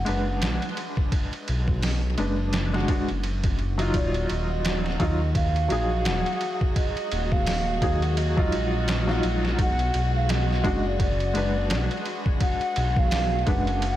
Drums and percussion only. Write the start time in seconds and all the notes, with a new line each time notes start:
0.06 ride
0.42 snare, ride
0.62 ride
0.77 ride
0.97 kick
1.12 kick, ride
1.33 ride
1.48 ride
1.68 kick
1.82 snare, open hi-hat
2.18 ride
2.53 snare, ride
2.74 snare
2.88 kick, ride
3.08 ride
3.24 ride
3.44 kick, ride
3.59 ride
3.79 ride
3.94 kick, ride
4.14 ride
4.30 ride
4.65 snare, ride
4.86 snare
5.00 kick, ride
5.35 kick, ride
5.56 ride
5.70 ride
6.05 snare, ride
6.26 ride
6.41 ride
6.61 kick
6.76 kick, ride
6.97 ride
7.12 ride
7.32 kick
7.46 snare, open hi-hat
7.82 kick, ride
8.02 ride
8.17 ride
8.38 kick
8.52 ride
8.88 snare, ride
9.09 snare
9.23 ride
9.45 snare
9.59 kick, ride
9.79 ride
9.94 ride
10.29 snare, ride
10.50 snare
10.64 kick, ride
11.00 kick, ride
11.20 ride
11.35 ride
11.70 snare, ride
11.91 ride
12.05 ride
12.26 kick
12.41 kick, ride
12.61 ride
12.76 ride
12.96 kick
13.11 snare, open hi-hat
13.47 kick, ride
13.67 ride
13.82 ride